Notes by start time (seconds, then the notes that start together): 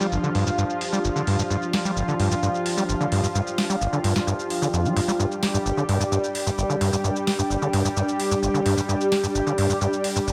Already playing: F3 D4 F4 G4 D5 G5, downlifter
0.00 G3, shaker
0.12 G1, shaker
0.23 D3, shaker
0.35 G2, open hi-hat
0.47 G2, shaker
0.58 G2, shaker
0.70 shaker
0.81 open hi-hat
0.93 G3, shaker
1.04 G1, shaker
1.16 D3, shaker
1.27 G2, open hi-hat
1.39 G2, shaker
1.50 G2, shaker
1.62 shaker
1.73 snare, open hi-hat
1.85 G3, shaker
1.97 G1, shaker
2.08 D3, shaker
2.20 G2, open hi-hat
2.31 G2, shaker
2.43 G2, shaker
2.55 shaker
2.66 open hi-hat
2.77 G3, shaker
2.89 G1, shaker
3.00 D3, shaker
3.12 G2, open hi-hat
3.23 G2, shaker
3.35 G2, shaker
3.47 shaker
3.58 snare, open hi-hat
3.70 G3, shaker
3.81 G1, shaker
3.93 D3, shaker
4.04 G2, open hi-hat
4.16 G2, snare, shaker
4.27 G2, shaker
4.39 shaker
4.50 open hi-hat
4.62 D3, shaker
4.73 F2, shaker
4.85 G3, shaker
4.96 G2, open hi-hat
5.08 G3, shaker
5.20 G2 G3 G4, shaker
5.32 shaker
5.43 snare, open hi-hat
5.54 G2, shaker
5.66 G1, shaker
5.77 D3, shaker
5.89 G2, open hi-hat
6.00 G2, shaker
6.12 G2, shaker
6.24 shaker
6.35 open hi-hat
6.46 G2, shaker
6.58 G1, shaker
6.70 D3, shaker
6.81 G2, open hi-hat
6.93 G2, shaker
7.04 G2, shaker
7.16 shaker
7.27 snare, open hi-hat
7.39 G2, shaker
7.50 G1, shaker
7.62 D3, shaker
7.73 G2, open hi-hat
7.85 G2, shaker
7.97 G2, shaker
8.08 shaker
8.20 open hi-hat
8.31 G2, shaker
8.43 G1, shaker
8.54 D3, shaker
8.66 G2, open hi-hat
8.77 G2, shaker
8.89 G2, shaker
9.01 shaker
9.12 snare, open hi-hat
9.23 G2, shaker
9.35 G1, shaker
9.47 D3, shaker
9.58 G2, open hi-hat
9.70 G2, shaker
9.81 G2, shaker
9.93 shaker
10.04 open hi-hat
10.16 G2, shaker
10.27 G1, shaker